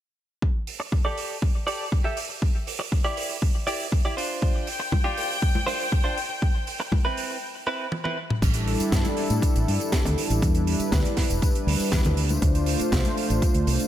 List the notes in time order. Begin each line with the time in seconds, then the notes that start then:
0.42 kick
0.67 open hi-hat
0.80 muted clean electric guitar stroke
0.92 muted clean electric guitar stroke, kick
1.05 G4 A4 D5
1.18 open hi-hat
1.42 kick
1.67 G4 A4 D5, open hi-hat
1.92 kick
2.04 G4 A4 E5
2.17 open hi-hat
2.29 muted clean electric guitar stroke
2.42 kick
2.67 open hi-hat
2.79 muted clean electric guitar stroke
2.92 muted clean electric guitar stroke, kick
3.04 E4 G4 D5
3.17 open hi-hat
3.42 kick
3.67 E4 G4 D5, open hi-hat
3.80 open hi-hat
3.92 kick
4.05 E4 G4 D5
4.17 D4 F4 C5, open hi-hat
4.41 G5, kick
4.67 open hi-hat
4.80 muted clean electric guitar stroke
4.92 muted clean electric guitar stroke, kick, high conga
5.04 D4 F4 G4
5.17 open hi-hat
5.42 kick
5.55 high conga
5.67 D4 F4 C5, open hi-hat
5.92 kick
6.04 D4 F4 C5
6.17 open hi-hat
6.29 muted clean electric guitar stroke
6.42 kick
6.67 open hi-hat
6.80 muted clean electric guitar stroke
6.92 muted clean electric guitar stroke, kick, high conga
7.05 C4 E4 B4
7.17 open hi-hat
7.67 C4 E4 B4
7.92 high tom
8.04 C4 E4 B4, high tom
8.30 muted clean electric guitar stroke, mid tom
8.41 A1 G3 D4 E4 A4, kick, closed hi-hat, crash, tambourine
8.54 closed hi-hat, tambourine
8.68 open hi-hat
8.80 muted fingered electric bass stroke, closed hi-hat, tambourine
8.92 G2, kick, snare, closed hi-hat, tambourine
9.05 closed hi-hat, tambourine, high conga
9.17 open hi-hat
9.30 A2, closed hi-hat, tambourine
9.42 muted fingered electric bass stroke, kick, closed hi-hat, tambourine
9.56 A1, closed hi-hat, tambourine
9.68 G2, open hi-hat
9.80 closed hi-hat, tambourine
9.92 kick, snare, closed hi-hat, tambourine
10.05 D2, closed hi-hat, tambourine, low conga
10.17 G3 D4 E4 A4, open hi-hat
10.30 A1, closed hi-hat, tambourine, high conga
10.42 E2 G3 D4 E4 B4, kick, closed hi-hat, tambourine
10.54 closed hi-hat, tambourine
10.67 open hi-hat
10.80 muted fingered electric bass stroke, closed hi-hat, tambourine
10.92 D2, kick, snare, closed hi-hat, tambourine
11.05 closed hi-hat, tambourine, high conga
11.17 muted fingered electric bass stroke, kick, snare, open hi-hat
11.30 E1, closed hi-hat, tambourine
11.42 kick, closed hi-hat, tambourine
11.55 closed hi-hat, tambourine
11.67 D2, open hi-hat
11.80 muted fingered electric bass stroke, open hi-hat, tambourine
11.92 E2, kick, snare, closed hi-hat, tambourine
12.04 D2, closed hi-hat, tambourine, low conga
12.17 A3 D4 F4 C5, open hi-hat
12.29 closed hi-hat, tambourine, high conga
12.41 D2 A3 D4 F4 C5, kick, closed hi-hat, tambourine
12.55 closed hi-hat, tambourine
12.66 open hi-hat
12.80 muted fingered electric bass stroke, closed hi-hat, tambourine
12.92 C2, kick, snare, closed hi-hat, tambourine
13.05 closed hi-hat, tambourine, high conga
13.17 open hi-hat
13.30 A1, closed hi-hat, tambourine
13.42 kick, closed hi-hat, tambourine
13.54 D2, closed hi-hat, tambourine
13.67 C2, open hi-hat
13.79 closed hi-hat, tambourine